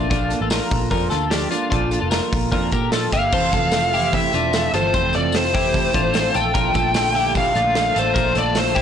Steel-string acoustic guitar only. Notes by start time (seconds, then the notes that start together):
0.08 A#2 F3 A#3 D4 A4
0.29 A#3 D4 A4
0.50 F3 A#3 D4 A4
0.70 A#3 D4 A4
0.90 A#2 F3 A#3 D4 A4
1.10 A#3 D4 A4
1.31 F3 A#3 D4 A4
1.50 A#3 D4 A4
1.71 A#2 F3 A#3 D4 A4
1.91 A#3 D4 A4
2.10 F3 A#3 D4 A4
2.31 A#3 D4 A4
2.51 A#2 F3 A#3 D4 A4
2.70 A#3 D4 A4
2.90 F3 A#3 D4 A4
3.10 A#3 D4 A4
3.32 F2 C3 E3 A3 C4 A4
3.53 E3 A3 C4 A4
3.72 E3 A3 C4 A4
3.92 E3 A3 C4 A4
4.12 F2 C3 E3 A3 C4 A4
4.31 E3 A3 C4 A4
4.52 E3 A3 C4 A4
4.72 E3 A3 C4 A4
4.93 F2 C3 E3 A3 C4 A4
5.12 E3 A3 C4 A4
5.32 E3 A3 C4 A4
5.53 E3 A3 C4 A4
5.72 F2 C3 E3 A3 C4 A4
5.93 E3 A3 C4 A4
6.13 E3 A3 C4 A4
6.33 A3 D4 A4
6.54 A#2 F3 A3 D4 A4
6.72 A3 D4 A4
6.93 F3 A3 D4 A4
7.14 A3 D4 A4
7.34 A#2 F3 A3 D4 A4
7.53 A3 D4 A4
7.74 F3 A3 D4 A4
7.95 A3 D4 A4
8.15 A#2 F3 A3 D4 A4
8.33 A3 D4 A4
8.54 F3 A3 D4 A4
8.75 A3 D4 A4